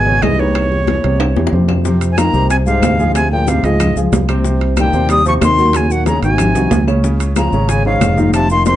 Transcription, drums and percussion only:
0.07 high bongo soft
0.07 high conga soft
0.22 high bongo soft
0.22 low bongo medium
0.22 high conga medium
0.22 high timbale medium
0.22 low timbale medium
0.22 claves medium
0.55 high bongo medium
0.55 high conga soft
0.55 high timbale medium
0.55 claves medium
0.72 high bongo soft
0.72 high conga soft
0.87 high bongo medium
0.87 high conga medium
0.87 high timbale medium
0.87 low timbale soft
1.04 high timbale medium
1.20 high bongo medium
1.20 high conga soft
1.20 high timbale medium
1.20 claves medium
1.36 high bongo medium
1.36 high conga medium
1.36 high timbale medium
1.47 high bongo medium
1.53 low conga medium
1.68 low bongo medium
1.68 low conga medium
1.68 low timbale medium
1.68 claves medium
1.85 high bongo medium
1.85 high conga soft
1.85 maracas medium
2.01 high bongo soft
2.01 high conga soft
2.01 high timbale medium
2.01 maracas medium
2.18 high bongo medium
2.18 high conga medium
2.18 high timbale medium
2.18 low timbale medium
2.18 claves medium
2.18 maracas medium
2.34 high conga soft
2.34 maracas soft
2.50 high bongo medium
2.50 high conga soft
2.50 high timbale medium
2.50 maracas medium
2.66 high bongo soft
2.66 high conga soft
2.66 maracas medium
2.82 high bongo soft
2.82 low bongo medium
2.82 high conga medium
2.82 high timbale medium
2.82 low timbale medium
2.82 claves medium
2.82 maracas medium
2.99 high conga medium
2.99 maracas soft
3.15 high bongo medium
3.15 high conga soft
3.15 high timbale medium
3.15 claves medium
3.15 maracas medium
3.32 high bongo soft
3.32 high conga soft
3.47 high bongo medium
3.47 high conga medium
3.47 high timbale medium
3.47 low timbale medium
3.47 maracas medium
3.64 high timbale medium
3.64 maracas soft
3.80 high bongo medium
3.80 high conga soft
3.80 low conga medium
3.80 high timbale medium
3.80 claves medium
3.80 maracas medium
3.96 high bongo soft
3.96 high conga soft
3.96 maracas medium
4.13 high bongo soft
4.13 low bongo medium
4.13 high conga medium
4.13 high timbale medium
4.13 low timbale medium
4.13 maracas medium
4.29 high timbale medium
4.29 claves medium
4.29 maracas soft
4.44 high bongo medium
4.44 high conga soft
4.44 maracas medium
4.61 high bongo soft
4.61 high conga soft
4.61 high timbale medium
4.77 high bongo medium
4.77 high conga loud
4.77 high timbale medium
4.77 low timbale medium
4.77 claves medium
4.77 maracas medium
4.93 high conga soft
4.93 maracas soft
5.09 high bongo medium
5.09 high conga soft
5.09 high timbale medium
5.09 maracas medium
5.25 high bongo soft
5.25 high conga soft
5.25 maracas soft
5.41 high bongo soft
5.41 low bongo medium
5.41 high conga medium
5.41 high timbale loud
5.41 low timbale medium
5.41 claves medium
5.41 maracas medium
5.58 high conga medium
5.58 maracas soft
5.73 high bongo medium
5.73 high timbale medium
5.73 claves medium
5.73 maracas medium
5.90 high bongo soft
5.90 high conga soft
5.90 maracas medium
6.06 high bongo medium
6.06 high conga medium
6.06 high timbale medium
6.06 low timbale medium
6.06 maracas medium
6.23 high timbale medium
6.23 maracas soft
6.38 high bongo medium
6.38 high conga soft
6.38 low conga medium
6.38 high timbale medium
6.38 claves medium
6.38 maracas medium
6.55 high bongo soft
6.55 high conga soft
6.55 high timbale medium
6.55 maracas medium
6.71 high bongo soft
6.71 low bongo medium
6.71 high conga medium
6.71 low timbale loud
6.71 maracas medium
6.88 low timbale medium
6.88 claves medium
6.88 maracas soft
7.04 high bongo medium
7.04 high conga soft
7.04 maracas medium
7.20 high bongo soft
7.20 high conga soft
7.20 high timbale medium
7.20 maracas medium
7.36 high bongo medium
7.36 high conga medium
7.36 high timbale medium
7.36 low timbale medium
7.36 claves medium
7.36 maracas medium
7.52 high conga soft
7.52 maracas soft
7.69 high bongo medium
7.69 high timbale medium
7.69 maracas medium
7.85 high bongo soft
7.85 high conga soft
8.01 high bongo soft
8.01 low bongo medium
8.01 high conga medium
8.01 high timbale loud
8.01 low timbale medium
8.01 claves medium
8.01 maracas medium
8.18 high conga medium
8.18 maracas soft
8.33 high bongo medium
8.33 high timbale medium
8.33 claves medium
8.33 maracas medium
8.50 high bongo soft
8.50 high conga soft
8.50 maracas medium
8.66 high bongo medium
8.66 high conga medium
8.66 high timbale medium
8.66 low timbale medium
8.66 maracas medium

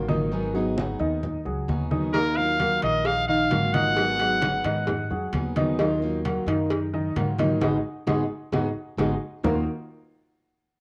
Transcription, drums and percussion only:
0.09 high conga medium
0.32 high conga soft
0.55 high conga soft
0.78 high conga medium
1.00 high conga soft
1.23 high conga soft
1.23 low conga medium
1.46 high conga soft
1.69 high conga medium
1.91 high conga medium
2.14 cowbell loud
2.14 high conga soft
2.37 high conga soft
2.60 cowbell medium
2.60 high conga medium
2.82 cowbell medium
2.82 high conga soft
3.05 cowbell loud
3.05 high conga soft
3.29 high conga soft
3.51 cowbell medium
3.51 high conga medium
3.74 cowbell medium
3.74 high conga medium
3.97 cowbell loud
3.97 high conga soft
4.19 cowbell medium
4.19 high conga soft
4.42 cowbell medium
4.42 high conga loud
4.64 cowbell medium
4.64 high conga soft
4.87 cowbell loud
4.87 high conga soft
4.87 low conga medium
5.12 high conga soft
5.33 cowbell medium
5.33 high conga medium
5.56 cowbell medium
5.56 high conga medium
5.79 cowbell loud
5.79 high conga soft
6.02 high conga soft
6.25 cowbell medium
6.25 high conga medium
6.48 cowbell medium
6.48 high conga soft
6.70 cowbell loud
6.70 high conga soft
6.94 high conga soft
7.16 cowbell medium
7.16 high conga medium
7.38 cowbell medium
7.38 high conga medium
7.61 cowbell loud
7.61 high conga loud
8.07 cowbell loud
8.07 high conga loud
8.53 cowbell medium
8.53 high conga loud
8.98 cowbell loud
8.98 high conga loud
9.44 low bongo loud
9.44 low conga loud

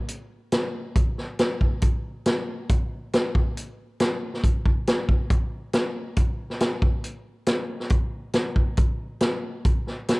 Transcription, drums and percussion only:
0.09 closed hi-hat medium
0.52 snare loud
0.52 closed hi-hat medium
0.96 kick loud
0.96 closed hi-hat medium
1.18 snare soft
1.39 snare loud
1.39 closed hi-hat medium
1.61 kick medium
1.82 kick medium
1.82 closed hi-hat medium
2.26 snare loud
2.26 closed hi-hat medium
2.69 kick loud
2.69 closed hi-hat medium
3.13 snare loud
3.13 closed hi-hat medium
3.35 kick medium
3.57 closed hi-hat medium
4.00 snare loud
4.00 closed hi-hat medium
4.34 snare soft
4.44 kick medium
4.44 closed hi-hat medium
4.66 kick medium
4.87 snare loud
4.87 closed hi-hat medium
5.09 kick medium
5.30 kick loud
5.30 closed hi-hat medium
5.73 snare loud
5.73 closed hi-hat medium
6.17 kick medium
6.17 closed hi-hat medium
6.50 snare soft
6.60 snare medium
6.60 closed hi-hat medium
6.82 kick medium
7.04 closed hi-hat medium
7.47 snare loud
7.47 closed hi-hat medium
7.80 snare soft
7.90 kick loud
7.90 closed hi-hat medium
8.33 snare medium
8.33 closed hi-hat medium
8.56 kick medium
8.77 kick loud
8.77 closed hi-hat medium
9.21 snare loud
9.21 closed hi-hat medium
9.65 kick loud
9.65 closed hi-hat soft
9.87 snare soft
10.08 snare loud
10.08 closed hi-hat medium

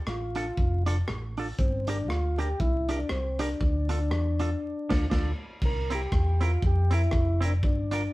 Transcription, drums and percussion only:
0.07 cross-stick loud
0.35 closed hi-hat medium
0.57 kick loud
0.86 closed hi-hat medium
1.08 cross-stick loud
1.37 open hi-hat medium
1.58 kick loud
1.58 hi-hat pedal medium
1.87 closed hi-hat medium
2.10 cross-stick loud
2.38 closed hi-hat medium
2.60 kick loud
2.89 closed hi-hat medium
3.09 cross-stick loud
3.39 cross-stick medium
3.39 closed hi-hat loud
3.61 kick loud
3.89 closed hi-hat medium
4.11 cross-stick loud
4.39 closed hi-hat medium
4.90 kick loud
4.90 snare loud
4.90 crash medium
5.11 kick loud
5.11 snare loud
5.11 crash medium
5.62 kick loud
5.62 crash medium
5.90 closed hi-hat medium
6.12 kick loud
6.12 cross-stick loud
6.41 closed hi-hat medium
6.62 kick loud
6.91 closed hi-hat medium
7.11 kick loud
7.11 cross-stick loud
7.42 closed hi-hat loud
7.63 kick loud
7.91 closed hi-hat medium

